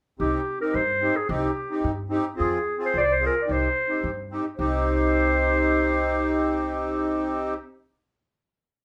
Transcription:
0.19 upright bass C2, accordion C4 D#4 G4, clarinet G4
0.60 accordion C4 D#4 G4, clarinet A#4
0.74 upright bass G2, clarinet C5
1.01 accordion C4 D#4 G4
1.16 clarinet G#4
1.28 upright bass C2, accordion C4 D#4 G4, clarinet G4
1.70 accordion C4 D#4 G4
1.84 upright bass G2
2.09 accordion C4 D#4 G4
2.36 accordion C4 F4 G#4
2.40 upright bass F2, clarinet G#4
2.78 accordion C4 F4 G#4
2.85 clarinet C5
2.94 upright bass C2, clarinet D5
3.00 clarinet C5 D5
3.12 clarinet C5
3.20 accordion C4 F4 G#4
3.26 clarinet A#4
3.42 accordion C4, clarinet D5
3.46 upright bass C2, accordion D#4 G4
3.52 clarinet C5
3.88 accordion C4 D#4 G4
4.04 upright bass G2
4.31 accordion C4 D#4 G4
4.57 upright bass C2, accordion C4 D#4 G4, clarinet C5

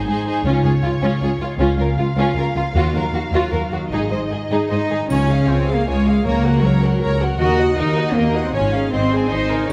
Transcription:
Already playing: harp G#2 C4 G#4
0.06 cello section G#2, harp D#4, viola section D#4, violin section G#4 C5
0.26 viola section D#4, violin section G#4 C5, harp G#4
0.45 double bass section C#2, cello section C#2, harp C#3, violin section C#4 C#5, viola section F4
0.64 cello section C#2, harp C#4, viola section F4, violin section G#4
0.84 cello section C#2, violin section F4, harp F4, viola section F4
1.01 cello section C#2, violin section C#4, viola section F4, harp G#4
1.21 cello section C#2, harp F4, viola section F4, violin section G#4
1.40 cello section C#2, harp G#3, violin section F4, viola section F4
1.59 double bass section C#2, cello section C#2, harp C#3, violin section C#4 F5, viola section F4
1.78 cello section C#2, harp A#3, viola section F4, violin section A#4
1.97 cello section C#2, harp F4, viola section F4, violin section F4
2.16 cello section C#2, violin section C#4, viola section F4, harp A#4
2.35 cello section C#2, harp F4, viola section F4, violin section A#4
2.55 cello section C#2, harp C#4, viola section F4, violin section F4
2.75 double bass section D#2, cello section D#2, harp D#3, violin section F4, viola section F#4
2.94 cello section D#2, harp F#3, viola section F#4, violin section A#4
3.13 cello section D#2, harp F4, viola section F#4, violin section F#4
3.32 cello section D#2, violin section F4, viola section F#4, harp A#4
3.52 cello section D#2, harp F4, viola section F#4, violin section A#4
3.71 cello section D#2, harp D#4, viola section F#4, violin section F#4
3.91 double bass section G#1, cello section G#2, harp G#2, violin section D#4 D#5, viola section G#4
4.10 cello section G#2, harp G#3, viola section G#4, violin section C5
4.31 cello section G#2, harp D#4, viola section G#4, violin section G#4
4.51 cello section G#2, violin section D#4, viola section G#4, harp C5
4.69 cello section G#2 D#4, harp D#4, viola section G#4, violin section C5
4.90 cello section G#2, harp D#3, violin section G#4, viola section G#4
5.08 double bass section C#2, harp C#3, timpani C#3, cello section C#4, viola section F4, violin section C#5 G#5, triangle
5.28 harp F4, viola section G#4, violin section F5
5.48 double bass section C#2, cello section C4, harp C#4, viola section F4, violin section C#5 G#5
5.68 viola section G#4, violin section F5
5.74 cello section A#3
5.86 double bass section C#2, cello section G#3, harp C#4, viola section F4, violin section C#5 G#5
6.06 harp F4, viola section G#4, violin section F5
6.24 double bass section C#2, timpani C#3, harp C#3, cello section A#3, viola section A#4, violin section C#5 A#5
6.45 harp F#4, viola section F#4, violin section A#4 F#5
6.62 double bass section C#2, cello section F#3, harp C#4, viola section A#4, violin section C#5 A#5
6.82 harp C4, viola section F#4, violin section A#4 F#5
7.01 double bass section C#2, harp C#4, viola section A#4, violin section C#5 A#5
7.20 harp F#4, viola section F#4, violin section A#4 F#5
7.39 double bass section D#2, harp D#3, viola section D#4, cello section F#4, violin section A#4 D#5
7.59 harp F#4, viola section F#4, violin section D#5 F#5
7.77 double bass section D#2, cello section D#4, harp D#4, viola section D#4, violin section A#4 D#5
7.96 harp C#4, viola section F#4, violin section D#5 F#5
8.15 double bass section D#2, cello section A#3, harp D#4, viola section D#4, violin section A#4 D#5
8.35 viola section F#4, harp F#4, violin section D#5 F#5
8.44 cello section C4
8.54 double bass section G#1, harp G#2, cello section C#4, viola section F4, violin section C#5 G#5
8.74 harp F4 G#4, viola section G#4, violin section F5
8.92 double bass section G#1, harp G#2, cello section C4, viola section C5, violin section D#5 C6
9.12 harp D#4, viola section G#4, violin section C5 G#5
9.30 double bass section G#1, harp D#3, cello section D#4, viola section C5, violin section D#5 C6
9.50 harp C#3, viola section A#4, violin section C5 G#5
9.69 harp C#3, cello section C#4

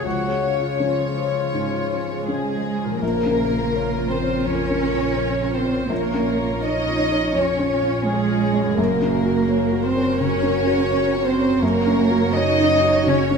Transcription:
Already playing: harp C#5, violin section C#5
0.05 felt piano C#2, cello section C#3, harp C#3, viola section F3, duduk F#4, violin section C#5
0.24 viola section G#3
0.42 viola section C#4, harp F5
0.61 viola section F4
0.79 harp F3, viola section C#4, felt piano C#4 F4 C#5, duduk F4
0.98 viola section G#3
1.17 viola section F3, harp G#4
1.36 viola section G#3
1.54 felt piano G#2, harp F3, viola section C#4
1.73 viola section F4
1.92 viola section C#4
2.10 viola section G#3
2.28 viola section F3, harp F3, cello section G#3, felt piano C#4 F4 C#5, violin section G#4
2.46 viola section G#3
2.64 viola section C#4
2.84 harp A#2, viola section F4
2.89 harp F3
2.93 harp C#3
2.97 viola section F4, harp A#4
3.01 double bass section A#1, felt piano A#1, cello section A#3, viola section A#4, violin section A#4
3.26 felt piano C#4
3.51 felt piano F4
3.74 felt piano C#5
3.98 felt piano F4
4.10 cello section C4, violin section C5
4.22 felt piano C#5
4.46 felt piano F2, cello section C#4, violin section C#5
4.70 felt piano C#4
4.94 felt piano F4
5.18 felt piano C#5
5.41 felt piano F4
5.54 cello section C4, violin section C5
5.65 felt piano C#5
5.89 felt piano A#1, double bass section A#1, cello section A#3, viola section F4 C#5, violin section A#4
6.14 felt piano C#4
6.39 felt piano F4
6.63 cello section D#4, felt piano C#5, violin section D#5
6.88 felt piano F4
7.11 felt piano C#5
7.35 felt piano F2, cello section C#4, violin section C#5
7.59 felt piano C#4
7.82 felt piano F4
8.06 cello section G#3, violin section G#4, felt piano C#5
8.30 felt piano F4
8.54 felt piano C#5
8.60 harp F#2
8.65 harp A#3
8.70 harp C#3
8.74 double bass section F#1, felt piano F#2, harp A#4
8.78 cello section A#3, viola section F#4 A#4, violin section A#4
9.02 felt piano C#4
9.25 felt piano F#4
9.49 felt piano C#5
9.72 felt piano F#4
9.85 cello section C4, violin section C5
9.96 felt piano C#5
10.19 felt piano C#3, cello section C#4, violin section C#5
10.43 felt piano C#4
10.66 felt piano F#4
10.91 felt piano C#5
11.14 felt piano F#4
11.25 cello section C4, violin section C5
11.39 felt piano C#5
11.61 double bass section F#1, felt piano F#2, cello section A#3, viola section F#4 C#5, violin section A#4
11.87 felt piano C#4
12.11 felt piano F#4
12.35 cello section D#4, felt piano C#5, violin section D#5
12.60 felt piano F#4
12.84 felt piano C#5
13.06 felt piano C#3, cello section C#4, violin section C#5
13.31 felt piano C#4

